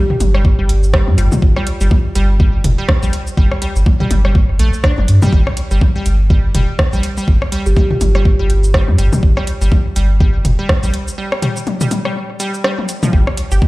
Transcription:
0.10 mid tom
0.20 sub bass G1, closed hi-hat, high tom, shaker
0.34 synth pluck G3, cross-stick
0.45 kick
0.59 sub bass G1, synth pluck G3
0.69 closed hi-hat
0.83 shaker
0.93 synth pluck G3, kick, cross-stick
1.08 sub bass G2, high tom
1.18 sub bass G1, synth pluck G3, kalimba F4, closed hi-hat, shaker
1.32 kalimba F4, mid tom, high tom, shaker
1.42 sub bass G1, kick
1.56 synth pluck G3, cross-stick
1.67 closed hi-hat
1.81 sub bass G1, synth pluck G3, shaker
1.91 kick, high tom
2.15 sub bass G1, synth pluck G3, closed hi-hat, shaker
2.40 synth pluck G3, kick
2.64 sub bass F1, closed hi-hat, mid tom
2.78 synth pluck G3
2.89 kick, cross-stick
3.03 sub bass A#1, synth pluck G3, shaker
3.13 closed hi-hat
3.27 shaker
3.37 sub bass G1, synth pluck G3, kick
3.52 cross-stick
3.62 synth pluck G3, closed hi-hat
3.76 sub bass G1, shaker
3.86 kick, high tom
4.00 synth pluck G3, mid tom
4.11 sub bass G1, closed hi-hat, high tom, shaker
4.25 synth pluck G3, cross-stick
4.35 kick
4.49 sub bass G1
4.59 sub bass A#1, synth pluck A3, closed hi-hat
4.73 shaker
4.84 synth pluck D4, kick, cross-stick
4.98 sub bass G1, high tom
5.08 sub bass G2, closed hi-hat, shaker
5.22 synth pluck G3, mid tom, high tom, shaker
5.33 sub bass G1, synth pluck G3, kick
5.47 cross-stick
5.57 closed hi-hat
5.71 sub bass G1, synth pluck G3, shaker
5.81 kick, high tom
5.96 synth pluck G3
6.06 sub bass G1, closed hi-hat, shaker
6.30 synth pluck G3, kick
6.54 sub bass F1, synth pluck G3, closed hi-hat, mid tom
6.79 kick, cross-stick
6.93 sub bass A#1, synth pluck G3, shaker
7.03 closed hi-hat
7.17 synth pluck G3, shaker
7.28 sub bass G1, kick
7.42 cross-stick
7.52 synth pluck G3, closed hi-hat
7.66 sub bass G1, kalimba G4, shaker
7.76 synth pluck G3, kalimba G4, kick, high tom
7.91 kalimba F4, mid tom
8.01 sub bass G1, closed hi-hat, high tom, shaker
8.15 synth pluck G3, cross-stick
8.25 kick
8.39 sub bass G1, synth pluck G3
8.50 closed hi-hat
8.64 shaker
8.74 synth pluck G3, kick, cross-stick
8.88 sub bass G2, high tom
8.98 sub bass G1, synth pluck G3, closed hi-hat, shaker
9.13 mid tom, high tom, shaker
9.23 sub bass G1, kick
9.37 synth pluck G3, cross-stick
9.47 closed hi-hat
9.61 sub bass G1, synth pluck G3, shaker
9.72 kick, high tom
9.96 sub bass G1, synth pluck G3, closed hi-hat, shaker
10.20 synth pluck G3, kick
10.45 sub bass F1, closed hi-hat, mid tom
10.59 synth pluck G3
10.69 kick, cross-stick
10.83 sub bass A#1, synth pluck G3, shaker
10.94 closed hi-hat
11.08 shaker
11.18 synth pluck G3
11.32 cross-stick
11.42 synth pluck G3, closed hi-hat, mid tom
11.57 shaker
11.67 closed hi-hat, high tom
11.81 synth pluck G3, closed hi-hat, mid tom, shaker
11.91 closed hi-hat, high tom, shaker
12.05 synth pluck G3, cross-stick
12.40 synth pluck G3, closed hi-hat, shaker
12.54 shaker
12.64 synth pluck G3, cross-stick
12.78 high tom
12.89 closed hi-hat, shaker
13.03 synth pluck F3, mid tom, high tom, shaker
13.13 sub bass G1, synth pluck G3, kick
13.27 cross-stick
13.37 closed hi-hat
13.52 sub bass G1, synth pluck G4, shaker
13.62 kick, high tom

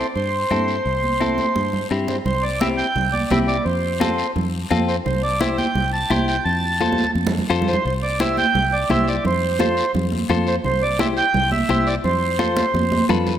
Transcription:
0.16 fingered electric bass G2, accordion C5, high conga, long guiro
0.51 fingered electric bass G2, clean electric guitar C4 E4 A4, high conga, short guiro
0.68 short guiro
0.86 fingered electric bass C2, high conga, long guiro
1.03 high conga
1.21 clean electric guitar C4 E4 A4, high conga, short guiro
1.38 high conga, short guiro
1.56 fingered electric bass G2, high conga, long guiro
1.73 low conga
1.91 fingered electric bass G2, clean electric guitar C4 E4 G4, short guiro
2.08 accordion C5, low conga, short guiro
2.26 fingered electric bass C2, accordion C5, low conga, long guiro
2.43 accordion D5, high conga
2.60 clean electric guitar C4 E4 G4, accordion E5, high conga, short guiro
2.77 accordion G5, short guiro
2.96 fingered electric bass C2, high conga, low conga, long guiro
3.12 accordion D5, high conga
3.30 fingered electric bass C2, clean electric guitar C4 E4 G4, accordion E5, high conga, low conga, short guiro
3.48 accordion D5, short guiro
3.65 fingered electric bass F2, accordion C5, long guiro
3.84 high conga
4.00 clean electric guitar C4 F4 A4, high conga, short guiro
4.18 short guiro
4.36 fingered electric bass F2, high conga, low conga, long guiro
4.71 fingered electric bass F2, clean electric guitar C4 F4 A4, high conga, short guiro
4.88 accordion C5, short guiro
5.06 fingered electric bass C2, accordion C5, low conga, long guiro
5.23 accordion D5, high conga
5.40 clean electric guitar E4 G4 C5, accordion E5, high conga, short guiro
5.58 accordion G5, high conga, short guiro
5.75 fingered electric bass C2, high conga, low conga, long guiro
5.93 accordion A5
6.10 fingered electric bass C2, clean electric guitar E4 G4 C5, accordion G5, high conga, short guiro
6.28 accordion G5, short guiro
6.45 fingered electric bass F2, accordion A5, long guiro
6.63 high conga
6.80 clean electric guitar F4 A4 C5, high conga, short guiro
6.92 high conga
6.98 short guiro
7.04 high conga
7.15 fingered electric bass F2, high conga, long guiro
7.27 low conga
7.38 low conga
7.50 fingered electric bass F2, clean electric guitar F4 A4 C5, short guiro
7.62 low conga
7.68 accordion C5, short guiro
7.73 low conga
7.85 fingered electric bass C2, accordion C5, long guiro
8.03 accordion D5, high conga
8.20 clean electric guitar E4 G4 C5, accordion E5, high conga, short guiro
8.37 accordion G5, high conga, short guiro
8.55 fingered electric bass C2, high conga, low conga, long guiro
8.73 accordion D5
8.90 fingered electric bass C2, clean electric guitar E4 G4 C5, accordion E5, high conga, low conga, short guiro
9.08 accordion D5, short guiro
9.25 fingered electric bass F2, accordion C5, low conga, long guiro
9.42 high conga
9.59 clean electric guitar F4 A4 C5, high conga, short guiro
9.77 short guiro
9.94 fingered electric bass F2, high conga, low conga, long guiro
10.12 high conga
10.29 fingered electric bass F2, clean electric guitar F4 A4 C5, high conga, short guiro
10.47 accordion C5, short guiro
10.64 fingered electric bass C2, accordion C5, low conga, long guiro
10.82 accordion D5, high conga
10.99 clean electric guitar E4 G4 C5, accordion E5, high conga, short guiro
11.17 accordion G5, short guiro
11.34 fingered electric bass C2, high conga, low conga, long guiro
11.52 accordion E5, high conga
11.69 fingered electric bass C2, clean electric guitar E4 G4 C5, high conga, short guiro
11.87 accordion D5, short guiro
12.04 fingered electric bass F2, accordion C5, low conga, long guiro
12.22 high conga
12.39 clean electric guitar F4 A4 C5, high conga, short guiro
12.57 high conga, short guiro
12.74 fingered electric bass F2, high conga, long guiro
12.92 high conga
13.09 fingered electric bass F2, clean electric guitar F4 A4 B4, low conga, short guiro
13.27 low conga, short guiro

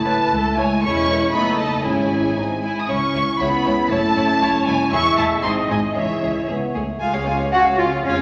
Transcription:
Already playing: double bass section F#1, cello section A3, french horn section A3 E4, violin section A5
0.06 violin section E4 C#5, viola section B4
0.32 double bass section C#2, viola section A4
0.57 cello section G#3, violin section E4 C#5 G#5, viola section C#5
0.83 double bass section E1, french horn section G#3 E4, cello section C#4, violin section E4 C#5 C#6, viola section C#5
1.11 viola section B4
1.33 double bass section F#1, french horn section A3 D#4, cello section B3, violin section D#4 D#5 B5, viola section A4
1.58 cello section A3, violin section A5
1.84 double bass section G#1, cello section G#3, french horn section C#4 E4, violin section E4 C#5 G#5, viola section G#4
2.36 double bass section G#1, french horn section C4 D#4, violin section D#4
2.62 cello section G#3, violin section E4 G#5
2.81 violin section D#6
2.88 double bass section C#2, french horn section C#4 E4, cello section C#4, violin section E4 C#5 C#6
3.14 double bass section C#2, violin section E4 C#5
3.40 double bass section C#2, cello section B3, violin section E4 C#5 B5, viola section G#4
3.65 double bass section C#2, violin section E4 C#5
3.90 double bass section F#1, cello section A3, violin section E4 C#5 A5, viola section A4
4.16 double bass section F#1, violin section E4 C#5
4.42 double bass section F#1, violin section E4 C#5, viola section C#5
4.66 double bass section F#1, cello section G#3, violin section E4 C#5 G#5
4.92 double bass section E1, french horn section G#3 E4, cello section C#4, violin section E4 G#4 C#6, viola section E5
5.18 double bass section E1, cello section A3, violin section E4 G#4 A5
5.43 double bass section G#1, cello section C4, french horn section D#4, violin section D#4 G#4 C6, viola section D#5
5.70 double bass section G#1, cello section G#3, violin section D#4 G#4 G#5
5.95 double bass section C#2, cello section E3, violin section C#4 G#4 E5, french horn section E4, viola section C#5
6.22 double bass section C#2, violin section C#4 G#4
6.48 double bass section C#2, french horn section B3, violin section C#4 G#4
6.75 double bass section C#2, french horn section A3, violin section C#4 G#4
7.01 double bass section C#2, viola section G#3 F4, violin section F5 G#5
7.14 viola section C#4 G#4, violin section C#5 F5
7.27 viola section G#3 F4, french horn section G#3 C#4, violin section F5 G#5
7.41 viola section C#4 G#4, violin section C#5 F5
7.52 viola section G#3 F4, clarinet F#4, cello section F#4, violin section F5 F#5 G#5, marimba F#5, flute F#5
7.66 viola section C#4 G#4, violin section C#5 F5
7.77 french horn section G#3 C#4, viola section G#3 F4, clarinet F4, cello section F4, marimba F5, violin section F5 G#5, flute F5
7.92 viola section C#4 G#4, violin section C#5 F5
8.03 double bass section F2, viola section G#3 F4, clarinet C#4, cello section C#4, marimba C#5, violin section C#5 F5 G#5, flute C#5
8.18 viola section C#4 G#4, violin section C#5 F5

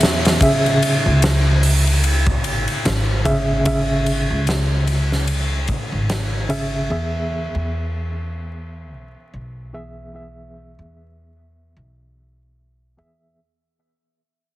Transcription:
Already playing: upright bass E2, reed electric piano E3 B3 G#4 E5
0.01 snare, ride
0.25 snare, ride
0.40 reed electric piano C#3 C#4 G#4 E5, kick, ride
0.66 ride
0.82 ride
1.06 upright bass C#2
1.22 snare, ride
1.63 open hi-hat
1.87 ride
2.04 ride
2.27 kick
2.44 upright bass G#1, ride
2.68 ride
2.85 upright bass G#1, snare, ride
3.25 reed electric piano C#3 C#4 G#4 E5, kick, ride
3.65 reed electric piano C#3 C#4 G#4 E5, kick, ride
4.06 ride
4.30 upright bass C#2
4.47 snare, ride
4.87 ride
5.12 snare
5.27 ride
5.68 kick, ride
5.92 upright bass G#1
6.10 snare, ride
6.49 reed electric piano C#3 C#4 G#4 E5, ride
6.89 upright bass E2, reed electric piano E3 B3 G#4 E5
7.55 upright bass E2
8.93 upright bass B1
9.34 upright bass B1
9.73 reed electric piano E3 B3 G#4 E5
10.13 reed electric piano E3 B3 G#4 E5
10.79 upright bass E2
11.77 upright bass B1
12.97 reed electric piano E3 B3 G#4 E5

